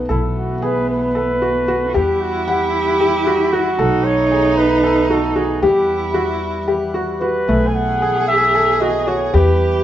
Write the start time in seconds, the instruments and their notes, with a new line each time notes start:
0.09 upright bass B1, harmonium E3 A3 B3, cello B3, flugelhorn E4, felt piano A4
0.37 flugelhorn F#4
0.62 felt piano G#4, flugelhorn B4
0.90 flugelhorn B4
1.15 felt piano A4
1.42 felt piano F#4
1.68 felt piano F#4
1.88 cello F#4
1.94 upright bass E2, harmonium G3 F#5, cello E4, felt piano G4, flugelhorn G4
2.21 flugelhorn F#4
2.47 flugelhorn G4, felt piano F#5
3.00 felt piano G4
3.27 felt piano F#4
3.53 flugelhorn F#4, felt piano F#4
3.79 upright bass B1, harmonium A3 B3, cello D#4, felt piano A4
4.05 flugelhorn C#5
4.31 felt piano G#4
4.57 flugelhorn B4
4.84 felt piano A4
5.10 felt piano F#4, flugelhorn A4
5.36 felt piano F#4, flugelhorn G#4
5.62 upright bass E2, harmonium G3 F#5, cello E4, flugelhorn G4, felt piano G4
6.14 felt piano F#4
6.68 felt piano G4
6.94 felt piano F#4
7.21 felt piano F#4, flugelhorn B4
7.48 upright bass B1, harmonium A3 B3, felt piano A3, cello G#4
7.67 flugelhorn G#5
7.75 flugelhorn F#5
8.02 felt piano G#4
8.28 flugelhorn E5
8.55 felt piano A4
8.81 felt piano F#4, flugelhorn D#5
9.07 felt piano F#4, flugelhorn C#5
9.34 upright bass E2, harmonium G3, felt piano G4, cello G4, flugelhorn B4